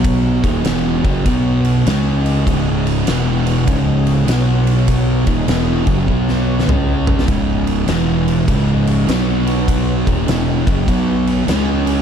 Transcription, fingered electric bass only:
X:1
M:4/4
L:1/8
Q:"Swing" 1/4=100
K:C#m
V:1 name="Fingered electric bass" clef=bass
B,,, D,,, E,,, F,,, B,,,2 C,,2 | C,,,2 E,,,2 C,,,2 B,,,2- | B,,, D,,, E,,, F,,, B,,,2 C,,2 | C,,,2 E,,,2 C,,,2 B,,,2- |
B,,, D,,, E,,, F,,, B,,,2 C,,2 |]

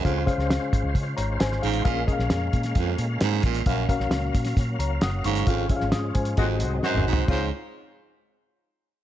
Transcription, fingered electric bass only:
X:1
M:4/4
L:1/16
Q:1/4=132
K:Db
V:1 name="Fingered electric bass" clef=bass
D,,2 z D,,2 z A,,, D,, D,2 A,,,2 A,,,2 =A,,,2 | B,,,2 z B,,, F,,2 B,,2 F,,2 B,,2 A,,2 =A,,,2 | B,,,2 z B,,, D,,2 B,,2 B,,2 D,,2 G,,,2 =G,,,2 | A,,,2 z A,,, A,,2 A,,2 A,,,2 C,,2 z A,,, _C,, =C,, |
D,,2 z12 z2 |]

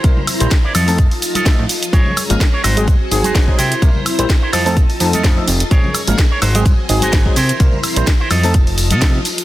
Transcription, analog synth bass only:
X:1
M:4/4
L:1/16
Q:"Swing 16ths" 1/4=127
K:Fphr
V:1 name="Analog synth bass" clef=bass
C,, z2 B,,, z2 F,,2 F,,, z4 =A,, z2 | B,,, z2 A,,, z2 A,,,2 A,, z A,,, A,,, A,,, z C, z | C,, z2 B,,, z2 F,,2 F,,, z F,, F,, F,, z F,,, z | B,,, z2 A,,, z2 A,,,2 A,, z A,,, A,,, A,,, z C, z |
C,, z2 B,,, z2 F,,2 F,,,3 C,2 z3 |]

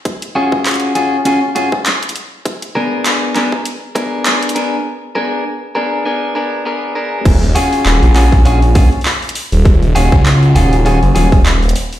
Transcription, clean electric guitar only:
X:1
M:4/4
L:1/8
Q:"Swing 16ths" 1/4=100
K:Ebm
V:1 name="Clean electric guitar"
z [DFGA]2 [DFGA] [DFGA] [DFGA] z2 | z [C=DAB]2 [CDAB] z [CDAB]2 [CDAB] | z [C=DAB] z [CDAB] [CDAB] [CDAB] [CDAB] [CDAB] | z [DFGA]2 [DFGA] [DFGA] [DFGA] z2 |
z [DFGA]2 [DFGA] [DFGA] [DFGA] z2 |]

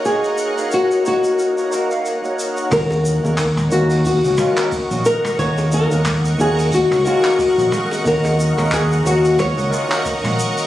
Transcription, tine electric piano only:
X:1
M:4/4
L:1/16
Q:"Swing 16ths" 1/4=90
K:Ebm
V:1 name="Tine electric piano"
[B,EGd]3 [B,EGf] z2 [B,EGd]3 [B,EGd] [B,EGB] [B,EGf] z [B,EGd]3 | [E,B,DG]3 [E,B,DB] z2 [E,B,DG]3 [E,B,DG] [E,B,DF] [E,B,DB] z [E,B,DG]3 | [E,B,DG]3 [E,B,DB] z2 [E,B,DG]3 [E,B,DG] [E,B,DF] [E,B,DB] z [E,B,DG]3 | [E,B,DG]3 [E,B,DB] z2 [E,B,DG]3 [E,B,DG] [E,B,DF] [E,B,DB] z [E,B,DG]3 |]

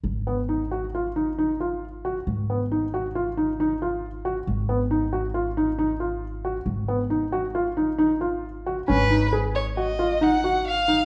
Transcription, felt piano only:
X:1
M:5/4
L:1/8
Q:1/4=136
K:G#dor
V:1 name="Felt piano"
z B, D F E D D E2 F | z B, D F E D D E2 F | z B, D F E D D E2 F | z B, D F E D D E2 F |
C D G2 F E D F2 D |]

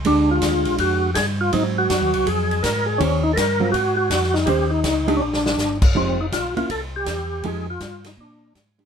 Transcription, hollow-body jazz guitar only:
X:1
M:4/4
L:1/8
Q:"Swing" 1/4=163
K:Fm
V:1 name="Hollow-body jazz guitar"
[A,=DG]4- [A,DG] z3 | [_G,C]4- [G,C] z3 | [E,DGc] z2 [_G,CF] z4 | [E,DGc] z2 [A,=DG] z4 |
[F,A,EG] z2 [B,D_F] z4 | [F,A,EG] z6 [A,=DG] |]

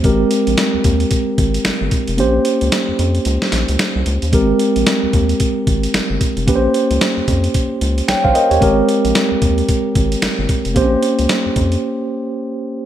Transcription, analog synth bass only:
X:1
M:4/4
L:1/16
Q:"Swing 16ths" 1/4=112
K:Bbdor
V:1 name="Analog synth bass" clef=bass
A,,,2 z B,,, z E,, E,,2 z2 A,,,2 G,,, G,,, z F,,, | B,,,2 z D,, z F,, F,,2 D,, z B,,, D,, z C,, D,, E,, | A,,,2 z B,,, z E,, E,,2 z2 A,,,2 G,,, G,,, z F,,, | B,,,2 z D,, z F,, F,,2 z2 D,,2 B,,, B,,, z E,, |
A,,,2 z B,,, z E,, E,,2 z2 A,,,2 G,,, G,,, z F,,, | B,,,2 z D,, z F,, F,,2 z8 |]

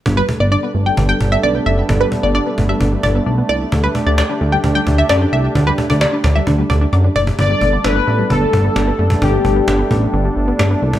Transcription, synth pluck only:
X:1
M:4/4
L:1/16
Q:1/4=131
K:G
V:1 name="Synth pluck"
z B z d d z2 g z g z e d z e z | z B z d d z2 e2 z d z3 d z | z B z d d z2 g z g z e d z e z | z B z d d z2 e2 z d z3 d z |
z16 | z16 |]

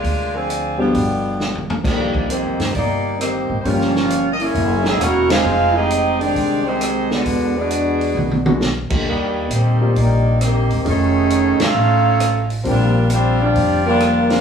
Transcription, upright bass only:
X:1
M:4/4
L:1/8
Q:"Swing" 1/4=133
K:Dphr
V:1 name="Upright bass" clef=bass
D,,4 G,,,4 | [K:Cm] C,,2- (3C,, F,, G,, G,,,3 A,,, | G,,,4 ^F,,,2 =E,,,2 | F,,,4 C,,4 |
=E,,4 =B,,,3 _D,, | E,,2 B,,2 B,,,3 =E,,, | F,,,3 z =A,,,4 | B,,,4 F,,,4 |]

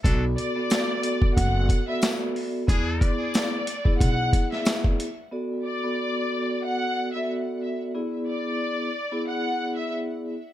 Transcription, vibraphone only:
X:1
M:4/4
L:1/16
Q:"Swing 16ths" 1/4=91
K:Bdor
V:1 name="Vibraphone"
[B,FAd]3 [B,FAd]3 [B,FAd]4- [B,FAd] [B,FAd]4- [B,FAd] | [B,EGd]6 z [B,EGd]6- [B,EGd] z2 | [B,FAd]3 [B,FAd]3 [B,FAd]4- [B,FAd] [B,FAd]4- [B,FAd] | [B,EGd]6 z [B,EGd]6- [B,EGd] z2 |]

